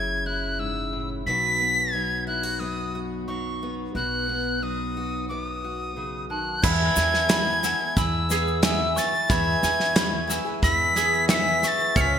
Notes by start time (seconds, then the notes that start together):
Already playing: F#1 F#2 C#3 F#3 C#4 E4 G#6
0.26 E4 F#6
0.59 G#2 E6
0.93 A2
1.26 B1 B2 F#3 B3 D#4 F#4 B6
1.61 B3
1.93 F#3 D#4 G#6
2.27 E4 F#6
2.43 F#4
2.60 F#2 B3 D#6
2.95 F#4
3.28 F#3 D#4 C#6
3.63 B3
3.95 B1 B2 F#4 F#6
4.29 B3
4.62 F#3 D#4 D#6
4.97 F#4
5.29 F#2 B3 D6
5.47 D#6
5.64 F#4
5.97 C#3
6.30 D#3 A5 F#6
6.62 E2 E3 G#3 B3 E4 G#4 B4 E5 B5 G#6, kick, snare, crash, shaker
6.95 E2 E3 B3 E4 G#4 G#5, snare, shaker
7.14 snare
7.29 E3 G#3 B3 E4 G#4 B4 E5 B5, snare, clap, shaker
7.63 E3 G#3 B3 E4 G#4 B4 F#5 E6, snare, shaker
7.79 B3 E4 G#4
7.97 E2 G#3 B3 E4 B4 E5 G#5 B5 E6, kick, snare, shaker
8.29 E3 B3 E4 G#4, snare, shaker
8.47 shaker
8.62 E3 G#3 B3 E4 G#4 B4 E5 G#5 E6, snare, clap, shaker
8.95 E3 B3 E4 G#4 C#6 A6, snare, shaker
9.12 B3 E4 G#4, shaker
9.28 E2 E3 G#3 B3 E4 G#4 B4 E5 B5 G#6, kick, snare, shaker
9.61 E2 E3 B3 E4 G#4 G#5, snare, shaker
9.80 snare
9.95 E3 G#3 B3 E4 G#4 B4 B5, snare, clap, shaker
10.27 E3 G#3 B3 E4 G#4 B4 E5 E6, snare, shaker
10.45 B3 E4 G#4
10.62 E2 G#3 B3 E4 B4 E5 B5 E6 B6, kick, snare, shaker
10.95 E3 B3 E4 G#4, snare, shaker
11.14 shaker
11.28 E3 G#3 B3 E4 G#4 B4 E5 F#5 E6 C#7, snare, clap, shaker
11.34 B6
11.61 E3 B3 E4 G#4 C#6 B6, snare, shaker
11.68 A6
11.78 B3 E4 G#4, shaker
11.95 C#2 C#3 F3 G#3 B3 C#4 F4 G#4 B4 C#5 F6 C#7, kick, snare, shaker
12.01 B6